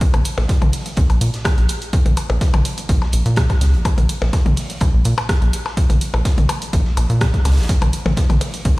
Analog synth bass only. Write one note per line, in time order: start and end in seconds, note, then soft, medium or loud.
0.14 0.22 A#1 loud
0.38 0.46 A#1 medium
0.62 0.70 A#1 loud
0.97 1.06 C#2 loud
1.10 1.18 A#1 medium
1.21 1.30 A#2 medium
1.58 1.66 A#1 medium
2.06 2.14 A#1 loud
2.30 2.38 A#1 medium
2.54 2.62 A#1 loud
2.89 2.98 A#1 loud
3.13 3.22 A#1 medium
3.26 3.43 A#2 loud
3.61 3.75 C#2 medium
3.74 3.82 A#1 medium
3.98 4.06 A#1 loud
4.22 4.30 A#1 medium
4.46 4.54 A#1 loud
4.81 4.90 C#2 medium
4.94 5.02 A#1 medium
5.05 5.14 A#2 medium
5.42 5.50 A#1 medium
5.90 5.98 A#1 loud
6.14 6.22 A#1 medium
6.38 6.46 A#1 loud
6.73 6.82 A#1 loud
6.97 7.06 A#1 medium
7.10 7.27 A#2 loud
7.45 7.59 C#2 medium
7.58 7.66 A#1 medium
7.82 7.90 A#1 loud
8.06 8.14 A#1 medium
8.30 8.38 A#1 loud
8.65 8.74 C#2 loud